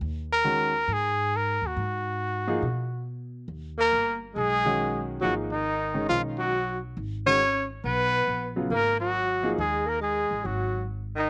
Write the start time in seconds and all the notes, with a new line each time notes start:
0.01 D#2
0.32 A#4
0.44 D#3 G#3 C#4 F#4
0.88 G#2
0.93 G#4
1.36 A#4
1.62 D#2
1.67 F#4
1.77 G#2
2.47 F3 A#3 D#4 G#4
2.62 B2
3.48 D#2
3.78 A#3 A#4
3.93 G1
4.34 B1 G#3 G#4
4.65 D#3 G#3 C#4 F#4
5.21 G#1 F3 F#3 A#3 D#4 F#4 G#4
5.52 D#3 D#4
5.94 D#3 G#3 C#4 D#4
6.09 B1 F3 F4
6.38 F#3 F#4
6.97 G#1
7.26 D#3 G#3 C#4 F#4 C#5
7.84 B1 B3 B4
8.28 A#1
8.56 C#3 F#3 B3 F4
8.70 G#1 A#3 A#4
9.00 F#3 F#4
9.43 F3 A#3 D#4 G#4
9.58 D#2 G#3 G#4
9.86 A#3 A#4
10.01 G#3 G#4
10.31 A1
10.44 G#1 F#3 F#4
11.15 D#3 D#4